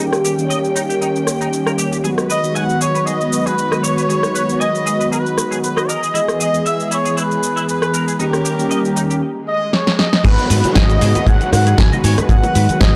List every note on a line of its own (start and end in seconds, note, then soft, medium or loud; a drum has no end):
0.00 0.35 D#3 medium
0.00 2.02 D#3 medium
0.00 0.35 G3 medium
0.00 0.35 A#3 medium
0.00 0.35 C#4 medium
0.00 2.02 C#4 medium
0.00 0.36 G4 medium
0.00 2.02 G5 medium
0.13 cross-stick medium
0.13 shaker soft
0.25 0.32 G4 medium
0.25 shaker medium
0.38 2.01 D#3 medium
0.38 2.01 G3 medium
0.38 2.01 A#3 medium
0.38 2.02 C#4 medium
0.38 2.02 G4 medium
0.38 shaker soft
0.50 0.57 D#5 medium
0.50 shaker soft
0.65 shaker soft
0.76 0.80 D#4 medium
0.76 shaker medium
0.90 0.93 G4 medium
0.90 shaker soft
1.01 1.06 D#4 medium
1.01 shaker soft
1.16 shaker soft
1.27 cross-stick medium
1.27 shaker medium
1.41 1.47 D#4 medium
1.41 shaker soft
1.53 shaker soft
1.66 1.70 A#4 medium
1.66 cross-stick medium
1.66 shaker soft
1.78 1.89 G4 medium
1.78 shaker medium
1.92 1.96 G4 medium
1.92 shaker soft
2.04 2.40 D#3 medium
2.04 2.40 F#3 medium
2.04 5.85 G#3 medium
2.04 2.40 G#3 medium
2.04 2.41 B3 medium
2.04 5.85 F#4 medium
2.04 2.41 F#4 medium
2.04 2.08 G#4 medium
2.04 5.85 B4 medium
2.04 shaker soft
2.18 cross-stick medium
2.18 shaker soft
2.30 2.37 B4 medium
2.30 2.54 D#5 medium
2.30 shaker medium
2.43 4.06 D#3 medium
2.43 4.06 F#3 medium
2.43 4.06 G#3 medium
2.43 4.07 B3 medium
2.43 4.07 F#4 medium
2.43 shaker soft
2.55 2.81 F#5 loud
2.55 2.62 G#5 medium
2.55 shaker soft
2.70 shaker soft
2.81 2.85 G#4 medium
2.81 3.05 C#5 medium
2.81 shaker medium
2.95 2.98 B4 medium
2.95 shaker soft
3.06 3.11 G#4 medium
3.06 3.46 D#5 loud
3.06 shaker soft
3.21 shaker soft
3.33 shaker medium
3.46 3.52 G#4 medium
3.46 3.83 B4 medium
3.46 shaker soft
3.58 shaker soft
3.72 3.75 D#5 medium
3.72 cross-stick medium
3.72 shaker soft
3.83 3.94 C#5 medium
3.83 4.61 C#5 loud
3.83 shaker medium
3.97 4.01 B4 medium
3.97 shaker soft
4.09 4.45 D#3 medium
4.09 4.45 F#3 medium
4.09 4.45 G#3 medium
4.09 4.45 B3 medium
4.09 4.46 F#4 medium
4.09 4.13 G#4 medium
4.09 shaker soft
4.23 cross-stick medium
4.23 shaker soft
4.35 4.42 B4 medium
4.35 shaker medium
4.48 5.87 D#3 medium
4.48 5.87 F#3 medium
4.48 5.87 G#3 medium
4.48 5.88 B3 medium
4.48 5.88 F#4 medium
4.48 shaker soft
4.60 5.12 D#5 loud
4.60 4.67 G#5 medium
4.60 shaker soft
4.75 shaker soft
4.86 4.90 G#4 medium
4.86 shaker medium
5.00 5.03 B4 medium
5.00 shaker soft
5.12 5.16 G#4 medium
5.12 5.59 B4 medium
5.12 shaker soft
5.26 shaker soft
5.38 cross-stick medium
5.38 shaker medium
5.51 5.57 G#4 medium
5.51 shaker soft
5.63 5.87 B4 medium
5.63 shaker soft
5.77 5.80 D#5 medium
5.77 cross-stick medium
5.77 shaker soft
5.89 8.17 E3 medium
5.89 8.17 G#4 medium
5.89 5.99 A#4 medium
5.89 6.39 D#5 loud
5.89 shaker medium
6.03 6.06 G#4 medium
6.03 shaker soft
6.14 6.50 E3 medium
6.14 6.50 G#3 medium
6.14 6.51 B3 medium
6.14 6.18 E4 medium
6.14 6.51 G#4 medium
6.14 6.51 D#5 medium
6.14 shaker soft
6.28 cross-stick medium
6.28 shaker soft
6.40 6.47 G#4 medium
6.40 6.64 D#5 medium
6.40 shaker medium
6.53 8.16 E3 medium
6.53 8.16 G#3 medium
6.53 8.17 B3 medium
6.53 8.17 G#4 medium
6.53 shaker soft
6.66 6.90 E5 medium
6.66 6.73 E5 medium
6.66 shaker soft
6.80 shaker soft
6.91 6.95 E4 medium
6.91 7.17 C#5 medium
6.91 shaker medium
7.05 7.09 G#4 medium
7.05 shaker soft
7.17 7.21 E4 medium
7.17 7.68 B4 medium
7.17 shaker soft
7.31 shaker soft
7.43 shaker medium
7.56 7.62 E4 medium
7.56 shaker soft
7.69 8.16 B4 medium
7.69 shaker soft
7.82 7.86 B4 medium
7.82 cross-stick medium
7.82 shaker soft
7.94 8.04 A#4 medium
7.94 shaker medium
8.08 8.11 G#4 medium
8.08 shaker soft
8.19 8.56 D#3 medium
8.19 9.21 D#3 medium
8.19 8.56 G3 medium
8.19 8.56 A#3 medium
8.19 9.21 C#4 medium
8.19 8.56 C#4 medium
8.19 8.24 D#4 medium
8.19 9.21 G4 medium
8.19 8.56 G4 medium
8.19 9.22 A#4 medium
8.19 shaker soft
8.33 cross-stick medium
8.33 shaker soft
8.45 8.52 G4 medium
8.45 shaker medium
8.58 9.22 D#3 medium
8.58 9.22 G3 medium
8.58 9.22 A#3 medium
8.58 9.22 C#4 medium
8.58 9.23 G4 loud
8.58 shaker soft
8.71 8.78 D#5 medium
8.71 shaker soft
8.85 shaker soft
8.96 9.01 D#4 medium
8.96 shaker medium
9.10 9.14 G4 medium
9.10 shaker soft
9.22 swell medium
9.48 9.72 D#5 loud
9.73 9.99 C#5 medium
9.73 snare medium
9.87 snare medium
9.99 10.25 D#5 medium
9.99 snare medium
10.13 snare medium
10.24 10.35 G#1 loud
10.24 10.61 D#3 medium
10.24 10.61 F#3 medium
10.24 12.96 G#3 medium
10.24 10.61 G#3 medium
10.24 10.61 B3 medium
10.24 12.96 F#4 medium
10.24 10.61 F#4 loud
10.24 10.29 G#4 loud
10.24 12.96 B4 medium
10.24 10.49 B4 loud
10.24 kick loud
10.24 closed hi-hat medium
10.24 crash loud
10.24 high bongo soft
10.24 downlifter medium
10.24 high conga medium
10.24 maracas soft
10.24 shaker soft
10.38 closed hi-hat soft
10.38 shaker soft
10.50 10.61 G#2 loud
10.50 10.57 B4 medium
10.50 10.75 B4 medium
10.50 open hi-hat loud
10.50 shaker medium
10.50 maracas loud
10.63 12.27 D#3 medium
10.63 12.27 F#3 medium
10.63 12.27 G#3 medium
10.63 12.27 B3 medium
10.63 12.27 F#4 loud
10.63 muted fingered electric bass stroke soft
10.63 closed hi-hat medium
10.63 high bongo medium
10.63 high conga medium
10.63 maracas soft
10.63 shaker soft
10.75 10.96 G#1 medium
10.75 11.28 D#5 loud
10.75 10.83 G#5 medium
10.75 kick loud
10.75 snare loud
10.75 closed hi-hat medium
10.75 maracas soft
10.75 shaker soft
10.90 closed hi-hat soft
10.90 maracas soft
10.90 shaker soft
11.01 11.12 G#2 medium
11.01 11.06 G#4 loud
11.01 open hi-hat medium
11.01 high conga loud
11.01 shaker medium
11.01 maracas medium
11.15 11.19 B4 medium
11.15 closed hi-hat medium
11.15 high bongo medium
11.15 low conga medium
11.15 maracas soft
11.15 shaker soft
11.27 11.38 G#1 loud
11.27 11.31 G#4 medium
11.27 11.52 F#5 loud
11.27 kick loud
11.27 closed hi-hat medium
11.27 maracas medium
11.27 shaker soft
11.41 closed hi-hat soft
11.41 shaker soft
11.52 11.73 G#2 medium
11.52 11.77 F#5 loud
11.52 cross-stick medium
11.52 open hi-hat loud
11.52 high bongo medium
11.52 high conga medium
11.52 low conga medium
11.52 maracas medium
11.52 shaker medium
11.67 11.73 G#4 medium
11.67 closed hi-hat medium
11.67 shaker soft
11.67 maracas soft
11.78 11.89 G#1 medium
11.78 11.90 G#5 loud
11.78 kick loud
11.78 snare loud
11.78 closed hi-hat medium
11.78 maracas medium
11.78 shaker soft
11.92 11.96 D#5 medium
11.92 high conga medium
11.92 shaker soft
12.04 12.15 G#2 loud
12.04 12.15 C#5 loud
12.04 12.16 G#5 loud
12.04 open hi-hat medium
12.04 high bongo medium
12.04 maracas medium
12.04 shaker medium
12.18 12.22 B4 medium
12.18 cross-stick medium
12.18 closed hi-hat medium
12.18 low conga medium
12.18 maracas soft
12.18 shaker soft
12.29 12.40 G#1 loud
12.29 12.66 D#3 medium
12.29 12.66 F#3 medium
12.29 12.66 G#3 medium
12.29 12.66 B3 medium
12.29 12.66 F#4 medium
12.29 12.34 G#4 loud
12.29 12.78 F#5 loud
12.29 kick loud
12.29 closed hi-hat medium
12.29 high conga loud
12.29 shaker soft
12.29 maracas soft
12.43 closed hi-hat soft
12.43 high bongo medium
12.43 shaker soft
12.55 12.66 G#2 loud
12.55 12.63 B4 medium
12.55 open hi-hat loud
12.55 maracas medium
12.55 shaker medium
12.68 12.96 D#3 medium
12.68 12.96 F#3 medium
12.68 12.96 G#3 medium
12.68 12.96 B3 medium
12.68 12.96 F#4 loud
12.68 muted fingered electric bass stroke soft
12.68 closed hi-hat medium
12.68 high conga medium
12.68 maracas soft
12.68 shaker soft
12.81 12.96 G#1 medium
12.81 12.96 D#5 loud
12.81 12.88 G#5 medium
12.81 kick loud
12.81 snare loud
12.81 closed hi-hat medium
12.81 maracas soft
12.81 shaker soft